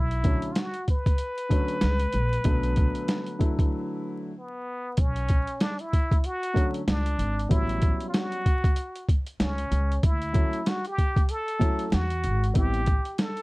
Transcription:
Already playing: upright bass B1, muted trumpet E4
0.11 closed hi-hat
0.23 upright piano D3 F#3 A3 C#4, kick, closed hi-hat
0.42 closed hi-hat
0.52 muted trumpet F4, closed hi-hat
0.56 muted trumpet F#4, snare
0.74 closed hi-hat
0.88 muted trumpet B4, kick, closed hi-hat
1.06 kick, closed hi-hat
1.18 closed hi-hat
1.38 closed hi-hat
1.49 upright piano D3 F#3 A3 C#4, kick, closed hi-hat
1.68 closed hi-hat
1.81 upright bass C#2, snare, closed hi-hat
2.00 closed hi-hat
2.13 upright bass A#1, closed hi-hat
2.33 closed hi-hat
2.44 upright bass B1, upright piano D3 F#3 A3 B3, kick, closed hi-hat
2.63 closed hi-hat
2.76 kick, closed hi-hat
2.95 closed hi-hat
3.08 snare, closed hi-hat
3.26 closed hi-hat
3.39 upright piano D3 F#3 A3 E4, kick, closed hi-hat
3.59 kick, closed hi-hat
4.37 muted trumpet B3
4.97 upright bass B1, muted trumpet C#4, kick, closed hi-hat
5.16 closed hi-hat
5.29 kick, closed hi-hat
5.47 closed hi-hat
5.61 muted trumpet D4, snare, closed hi-hat
5.79 muted trumpet E4, closed hi-hat
5.93 kick, closed hi-hat
6.11 kick, closed hi-hat
6.24 muted trumpet F#4, closed hi-hat
6.43 closed hi-hat
6.54 upright piano D3 F#3 A3 C#4, kick, closed hi-hat
6.74 closed hi-hat
6.88 upright bass C#2, muted trumpet D4, snare, closed hi-hat
7.06 closed hi-hat
7.19 upright bass G#1, closed hi-hat
7.39 closed hi-hat
7.49 upright bass A1, upright piano F#3 G3 B3 C#4, muted trumpet E4, kick, closed hi-hat
7.69 closed hi-hat
7.82 kick, closed hi-hat
8.00 closed hi-hat
8.08 muted trumpet F4
8.14 muted trumpet F#4, snare, closed hi-hat
8.32 closed hi-hat
8.46 kick, closed hi-hat
8.64 kick, closed hi-hat
8.76 closed hi-hat
8.96 closed hi-hat
9.09 kick, closed hi-hat
9.27 closed hi-hat
9.40 upright bass C#2, muted trumpet C#4, snare, closed hi-hat
9.58 closed hi-hat
9.71 upright bass C#2, closed hi-hat
9.92 closed hi-hat
10.03 upright bass D2, muted trumpet E4, kick, closed hi-hat
10.22 closed hi-hat
10.33 upright piano F#3 A3 C#4 E4, kick, closed hi-hat
10.53 closed hi-hat
10.66 muted trumpet F#4, snare, closed hi-hat
10.85 muted trumpet G4, closed hi-hat
10.98 kick, closed hi-hat
11.16 kick, closed hi-hat
11.29 muted trumpet A4, closed hi-hat
11.48 closed hi-hat
11.59 upright piano F#3 A3 C#4 E4, kick, closed hi-hat
11.79 closed hi-hat
11.92 upright bass E2, muted trumpet F#4, snare, closed hi-hat
12.10 closed hi-hat
12.24 upright bass G#1, closed hi-hat
12.44 closed hi-hat
12.54 upright bass A1, upright piano G3 B3 C4 E4, muted trumpet G4, kick, closed hi-hat
12.74 closed hi-hat
12.86 kick, closed hi-hat
13.05 closed hi-hat
13.18 muted trumpet A4, snare, closed hi-hat
13.37 closed hi-hat

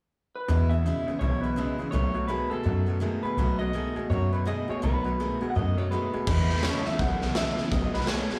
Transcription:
0.35 clean electric guitar B4
0.48 clean electric guitar E2 B2, steel-string acoustic guitar E2 B2 E3 G#3 B3 E4, upright bass E2
0.69 clean electric guitar E2 B2 E5, steel-string acoustic guitar G#3 B3 E4
0.74 steel-string acoustic guitar E3
0.84 clean electric guitar E2 C#3, steel-string acoustic guitar E2 B2 E3 G#3 B3 E4
1.06 clean electric guitar E2 C#3, steel-string acoustic guitar G#3 B3 E4, muted upright bass stroke
1.11 steel-string acoustic guitar E3
1.19 upright bass B1, clean electric guitar E2 B2 C#5, steel-string acoustic guitar E3 G#3 B3
1.24 steel-string acoustic guitar E4
1.41 clean electric guitar E2 B2 B4, steel-string acoustic guitar B3 E4
1.45 steel-string acoustic guitar E3 G#3
1.56 steel-string acoustic guitar E2 B2 E3 G#3 B3 E4, clean electric guitar E2 C#3
1.78 clean electric guitar E2 C#3, steel-string acoustic guitar E3 G#3 B3 E4, muted upright bass stroke
1.91 upright bass B1, steel-string acoustic guitar B2 D#3 A3 B3 F#4, clean electric guitar B2 F#3 C#5
2.14 clean electric guitar B2 F#3, steel-string acoustic guitar A3 B3 F#4
2.27 steel-string acoustic guitar B2 D#3 A3 B3 F#4, clean electric guitar B2 G#3 B4
2.50 clean electric guitar B2 G#3 A4, steel-string acoustic guitar B3 F#4, muted upright bass stroke
2.54 steel-string acoustic guitar A3
2.63 upright bass F#2, clean electric guitar B2 F#3, steel-string acoustic guitar D#3 A3 B3 F#4
2.86 clean electric guitar B2 F#3, steel-string acoustic guitar A3 B3 F#4
3.00 steel-string acoustic guitar B2 D#3 A3 B3 F#4, clean electric guitar B2 G#3
3.23 clean electric guitar B2 G#3 B4, steel-string acoustic guitar A3 B3 F#4, muted upright bass stroke
3.37 upright bass B1, steel-string acoustic guitar B2 D#3 A3 B3 F#4, clean electric guitar B2 F#3
3.59 clean electric guitar B2 F#3 D#5, steel-string acoustic guitar A3 B3 F#4
3.73 steel-string acoustic guitar B2 D#3 A3 B3 F#4, clean electric guitar B2 G#3
3.96 clean electric guitar B2 G#3, steel-string acoustic guitar A3 B3 F#4, muted upright bass stroke
4.10 upright bass F#2, clean electric guitar B2 F#3 C#5, steel-string acoustic guitar D#3 A3 B3 F#4
4.32 clean electric guitar B2 F#3 B4, steel-string acoustic guitar A3 B3 F#4
4.46 steel-string acoustic guitar B2 D#3 A3 B3 F#4, clean electric guitar B2 G#3 D#5
4.68 clean electric guitar B2 G#3 C#5, steel-string acoustic guitar A3 B3 F#4, muted upright bass stroke
4.82 upright bass B1, steel-string acoustic guitar B2 D#3 A3 B3 F#4, clean electric guitar B2 F#3 B4
5.04 clean electric guitar B2 F#3, steel-string acoustic guitar A3 B3 F#4
5.20 clean electric guitar B2 G#3, steel-string acoustic guitar B2 D#3 A3 B3 F#4
5.41 clean electric guitar B2 G#3, steel-string acoustic guitar A3 B3 F#4, muted upright bass stroke
5.50 clean electric guitar F#5
5.55 upright bass F#2, clean electric guitar B2 F#3 D#5, steel-string acoustic guitar D#3 A3 B3 F#4
5.77 clean electric guitar B2 F#3 C#5, steel-string acoustic guitar B3 F#4
5.81 steel-string acoustic guitar A3
5.91 clean electric guitar B2 G#3 B4, steel-string acoustic guitar B2 D#3 A3 B3 F#4
6.14 clean electric guitar B2 G#3, steel-string acoustic guitar A3 B3 F#4, muted upright bass stroke
6.27 upright bass E2, clean electric guitar E2 B2 B4, steel-string acoustic guitar E2 B2 E3 G#3 B3 E4, kick, snare, crash
6.49 clean electric guitar E2 B2, steel-string acoustic guitar E3 G#3 B3 E4, snare
6.56 snare
6.63 steel-string acoustic guitar E2 B2 E3 G#3 B3 E4, clean electric guitar E2 C#3 C#5, snare, hi-hat pedal
6.85 clean electric guitar E2 C#3 E5, steel-string acoustic guitar E3 G#3 B3 E4, muted upright bass stroke, snare
6.99 upright bass B1, clean electric guitar E2 B2 F#5, steel-string acoustic guitar E3 G#3 B3 E4, kick, snare
7.21 clean electric guitar E2 B2, steel-string acoustic guitar E3 G#3 B3 E4, snare
7.35 clean electric guitar E2 C#3 E5, steel-string acoustic guitar E2 B2 E3 G#3 B3 E4, snare, hi-hat pedal
7.57 clean electric guitar E2 C#3, steel-string acoustic guitar E3 G#3 B3 E4, muted upright bass stroke, snare
7.71 upright bass B1, clean electric guitar B2 F#3 D#5, steel-string acoustic guitar B2 D#3 A3 B3 F#4, kick, snare
7.94 clean electric guitar B2 F#3 B4, steel-string acoustic guitar A3 B3 F#4, snare
8.00 snare
8.07 clean electric guitar B2 G#3 C#5, steel-string acoustic guitar B2 D#3 A3 B3 F#4, snare, hi-hat pedal
8.30 clean electric guitar B2 G#3 B4, steel-string acoustic guitar A3 B3 F#4, muted upright bass stroke, snare

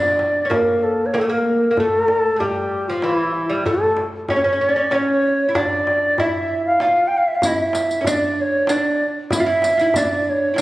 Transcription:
Already playing: oud D4, ney D5
0.19 darbuka tek
0.45 oud C#4
0.50 oud A#3, ney A#4, darbuka dum
0.83 ney A4
1.06 ney C#5
1.14 oud A#3, ney A4, darbuka tek
1.21 oud A3
1.28 oud A#3, ney A#4
1.71 oud A#3
1.77 oud A3, ney A4, darbuka dum
2.08 darbuka tek
2.36 oud G3 A3, ney G4, darbuka dum
2.88 oud F3, ney F4
3.02 oud E3, ney E4, darbuka tek
3.50 oud G3
3.66 oud A3, ney A4, darbuka dum
3.97 darbuka tek
4.29 oud C#4, ney C#5, darbuka dum
4.36 oud C#4
4.44 oud C#4
4.53 oud C#4
4.61 oud C#4, ney D5
4.69 oud C#4
4.76 oud C#4
4.91 oud C#4, ney C#5, darbuka tek
5.49 oud E4
5.55 oud D4, ney D5, darbuka dum
5.87 darbuka tek
6.18 oud E4, ney E5, darbuka dum
6.49 darbuka ka
6.66 ney F5
6.80 oud F4, ney F5, darbuka tek
7.07 ney G5, darbuka ka
7.17 ney F5
7.27 ney E5
7.35 ney F5
7.42 oud E4, riq, darbuka dum
7.46 ney E5
7.73 riq, darbuka tek
7.91 riq
8.01 oud C#4, darbuka dum
8.07 oud D4, ney D5, riq
8.41 ney C#5
8.67 oud D4, riq, darbuka tek
8.71 ney D5
9.30 oud E4, ney E5, riq, darbuka dum
9.40 oud F4
9.46 oud E4
9.62 riq, darbuka tek
9.77 oud E4 F4, riq
9.94 oud D4, ney D5, riq, darbuka dum
10.30 ney C#5
10.54 oud E4, darbuka tek
10.58 oud D4, riq

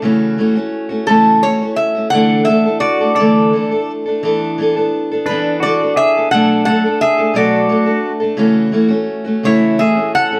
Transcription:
0.02 steel-string acoustic guitar C#3 E3 A3 C#4 F#4
0.38 steel-string acoustic guitar E3 A3 C#4 F#4
0.55 steel-string acoustic guitar A3 C#4 F#4
0.89 steel-string acoustic guitar A3 C#4 F#4
1.07 steel-string acoustic guitar C#3 E3 A3 C#4, resonator guitar played with a steel bar A4
1.11 steel-string acoustic guitar F#4
1.43 steel-string acoustic guitar E3 A3 C#4 F#4, resonator guitar played with a steel bar C#5
1.61 steel-string acoustic guitar A3 C#4 F#4
1.76 resonator guitar played with a steel bar E5
1.95 steel-string acoustic guitar A3 C#4 F#4
2.10 steel-string acoustic guitar D3 E3, resonator guitar played with a steel bar F#5
2.14 steel-string acoustic guitar A3 D4 A4
2.45 steel-string acoustic guitar E3 A3, resonator guitar played with a steel bar E5
2.49 steel-string acoustic guitar D4 A4
2.66 steel-string acoustic guitar A3 D4 A4
2.80 pedal steel guitar F#4, resonator guitar played with a steel bar D5
3.01 steel-string acoustic guitar A3 D4 A4
3.15 steel-string acoustic guitar D3, pedal steel guitar A4, resonator guitar played with a steel bar D5
3.20 steel-string acoustic guitar E3 A3 D4 A4
3.53 steel-string acoustic guitar E3 A3 D4 A4
3.71 steel-string acoustic guitar A3 D4 A4
4.06 steel-string acoustic guitar A3 D4 A4
4.23 steel-string acoustic guitar E3 B3 D4 A4
4.58 steel-string acoustic guitar E3 B3 D4 A4
4.76 steel-string acoustic guitar B3 D4 A4
5.11 steel-string acoustic guitar B3 D4 A4
5.26 steel-string acoustic guitar E3, pedal steel guitar D4, resonator guitar played with a steel bar B4
5.30 steel-string acoustic guitar B3 D4 A4
5.60 steel-string acoustic guitar E3, pedal steel guitar F#4, resonator guitar played with a steel bar D5
5.65 steel-string acoustic guitar B3 D4 A4
5.81 steel-string acoustic guitar B3 D4 A4
5.96 pedal steel guitar G#4, resonator guitar played with a steel bar E5
6.17 steel-string acoustic guitar B3 D4 A4
6.31 steel-string acoustic guitar B2 F#3 A3 D4 A4, pedal steel guitar A4, resonator guitar played with a steel bar F#5
6.65 steel-string acoustic guitar F#3 A3 D4, pedal steel guitar A4, resonator guitar played with a steel bar F#5
6.69 steel-string acoustic guitar A4
6.84 steel-string acoustic guitar A3 D4 A4
7.01 pedal steel guitar G#4, resonator guitar played with a steel bar E5
7.18 steel-string acoustic guitar A3 D4 A4
7.34 steel-string acoustic guitar B2 F#3 A3 D4 A4, resonator guitar played with a steel bar D5
7.38 pedal steel guitar F#4
7.69 steel-string acoustic guitar F#3 A3 D4 A4
7.86 steel-string acoustic guitar A3 D4 A4
8.20 steel-string acoustic guitar A3 D4 A4
8.37 steel-string acoustic guitar C#3 E3 A3 C#4 F#4
8.72 steel-string acoustic guitar E3 A3 C#4 F#4
8.88 steel-string acoustic guitar A3 C#4 F#4
9.24 steel-string acoustic guitar A3 C#4 F#4
9.43 steel-string acoustic guitar C#3 E3 A3 C#4 F#4, pedal steel guitar E4, resonator guitar played with a steel bar C#5
9.78 steel-string acoustic guitar E3 A3 C#4 F#4, pedal steel guitar G#4, resonator guitar played with a steel bar E5
9.95 steel-string acoustic guitar A3 C#4 F#4
10.15 pedal steel guitar A4, resonator guitar played with a steel bar F#5
10.31 steel-string acoustic guitar A3 C#4 F#4

